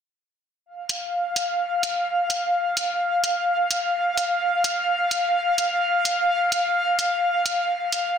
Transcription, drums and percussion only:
0.89 closed hi-hat loud
1.36 closed hi-hat medium
1.83 closed hi-hat loud
2.30 closed hi-hat medium
2.77 closed hi-hat loud
3.24 closed hi-hat medium
3.71 closed hi-hat loud
4.17 closed hi-hat medium
4.64 closed hi-hat loud
5.11 closed hi-hat medium
5.58 closed hi-hat loud
6.05 closed hi-hat medium
6.52 closed hi-hat loud
6.99 closed hi-hat medium
7.46 closed hi-hat loud
7.92 closed hi-hat medium

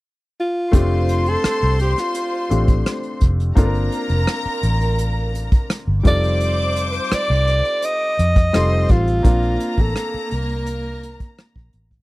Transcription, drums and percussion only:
0.73 kick medium
0.73 closed hi-hat medium
1.09 closed hi-hat medium
1.26 closed hi-hat soft
1.44 cross-stick medium
1.44 closed hi-hat medium
1.62 closed hi-hat soft
1.79 closed hi-hat medium
1.98 cross-stick soft
1.98 closed hi-hat soft
2.14 closed hi-hat medium
2.51 closed hi-hat medium
2.68 kick medium
2.68 closed hi-hat soft
2.86 cross-stick medium
2.86 closed hi-hat medium
3.03 closed hi-hat soft
3.21 kick medium
3.21 closed hi-hat medium
3.40 closed hi-hat soft
3.57 kick medium
3.57 closed hi-hat medium
3.75 closed hi-hat soft
3.92 closed hi-hat medium
4.09 closed hi-hat soft
4.27 cross-stick medium
4.27 closed hi-hat medium
4.63 closed hi-hat medium
4.81 closed hi-hat soft
4.98 closed hi-hat medium
5.35 closed hi-hat medium
5.52 kick medium
5.52 closed hi-hat soft
5.70 cross-stick medium
5.70 closed hi-hat medium
6.05 kick medium
6.05 cross-stick soft
6.05 closed hi-hat medium
6.24 closed hi-hat soft
6.40 closed hi-hat medium
6.76 closed hi-hat medium
6.93 closed hi-hat soft
7.12 cross-stick medium
7.12 closed hi-hat medium
7.47 closed hi-hat medium
7.65 closed hi-hat soft
7.82 closed hi-hat medium
8.19 closed hi-hat medium
8.36 kick medium
8.36 closed hi-hat medium
8.54 cross-stick medium
8.54 closed hi-hat medium
8.88 kick medium
8.88 closed hi-hat medium
9.08 closed hi-hat soft
9.25 kick medium
9.25 closed hi-hat medium
9.42 closed hi-hat soft
9.60 closed hi-hat medium
9.77 kick medium
9.77 closed hi-hat soft
9.96 cross-stick medium
9.96 closed hi-hat medium
10.14 closed hi-hat soft
10.31 closed hi-hat medium
10.49 closed hi-hat medium
10.66 closed hi-hat medium
11.03 closed hi-hat medium
11.20 kick medium
11.20 closed hi-hat soft
11.38 cross-stick medium
11.38 closed hi-hat medium
11.56 kick medium
11.73 closed hi-hat medium
11.91 kick medium
11.91 closed hi-hat soft

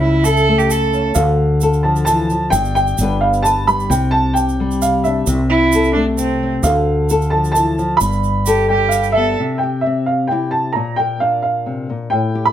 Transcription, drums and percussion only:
0.25 shaker medium
0.37 shaker soft
0.59 shaker soft
0.71 shaker medium
0.93 shaker soft
1.15 shaker medium
1.61 shaker medium
1.73 shaker soft
1.96 shaker soft
2.07 shaker medium
2.30 shaker soft
2.53 shaker medium
2.65 shaker soft
2.76 shaker soft
2.87 shaker soft
2.98 shaker medium
3.34 shaker soft
3.45 shaker medium
3.68 shaker soft
3.80 shaker soft
3.91 shaker medium
4.36 shaker medium
4.49 shaker soft
4.71 shaker soft
4.82 shaker medium
5.05 shaker soft
5.27 shaker medium
5.72 shaker medium
5.84 shaker soft
6.18 shaker medium
6.63 shaker medium
7.09 shaker medium
7.22 shaker soft
7.44 shaker soft
7.56 shaker medium
7.79 shaker soft
8.01 shaker medium
8.12 shaker soft
8.24 shaker soft
8.46 shaker medium
8.92 shaker medium
9.03 shaker soft

